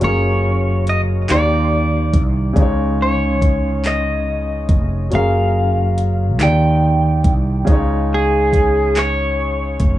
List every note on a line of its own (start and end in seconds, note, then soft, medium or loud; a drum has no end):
0.00 1.25 F#1 loud
0.00 1.28 F#3 medium
0.00 1.29 C#4 medium
0.00 1.29 F4 medium
0.00 1.30 G#4 medium
0.00 closed hi-hat medium
0.04 1.30 A#4 medium
0.04 0.84 C#5 medium
0.87 1.00 D#5 medium
0.87 closed hi-hat medium
1.29 2.11 D#2 loud
1.29 2.56 D#3 medium
1.29 2.56 D#4 medium
1.29 2.57 F4 medium
1.29 2.58 G4 medium
1.29 2.22 D5 medium
1.29 2.58 D5 medium
1.29 clap loud
1.29 closed hi-hat medium
2.14 2.53 C2 medium
2.14 kick medium
2.14 closed hi-hat medium
2.53 4.71 C#2 loud
2.53 5.06 C#3 medium
2.53 5.07 C#4 medium
2.53 kick loud
2.53 closed hi-hat medium
2.58 5.08 D#4 medium
2.58 5.09 F4 medium
2.62 5.10 C#5 medium
3.02 3.82 C#5 medium
3.42 kick medium
3.42 closed hi-hat medium
3.84 5.09 D#5 medium
3.84 clap medium
3.84 closed hi-hat medium
4.69 5.08 F1 medium
4.69 kick medium
4.69 closed hi-hat medium
5.10 6.40 F#1 loud
5.10 6.39 F#3 medium
5.10 6.39 C#4 medium
5.10 6.39 F4 medium
5.10 6.40 G#4 medium
5.10 closed hi-hat medium
5.15 6.41 A#4 medium
5.15 6.37 F5 medium
5.98 closed hi-hat medium
6.38 7.21 D#2 medium
6.38 7.67 D#3 medium
6.38 7.67 D#4 medium
6.38 7.68 F4 medium
6.38 7.68 G4 medium
6.38 clap loud
6.38 closed hi-hat medium
6.42 7.69 D5 medium
6.42 7.33 G5 loud
7.24 7.63 C2 medium
7.24 kick medium
7.24 closed hi-hat medium
7.65 9.76 C#2 loud
7.65 9.99 C#3 medium
7.65 9.99 C#4 medium
7.65 kick loud
7.65 closed hi-hat medium
7.69 9.99 D#4 medium
7.69 9.99 F4 medium
7.69 9.99 C#5 medium
8.14 9.00 G#4 medium
8.53 kick medium
8.53 closed hi-hat medium
8.96 9.99 C#5 loud
8.96 clap loud
8.96 closed hi-hat medium
9.80 9.99 F1 medium
9.80 kick medium
9.80 closed hi-hat medium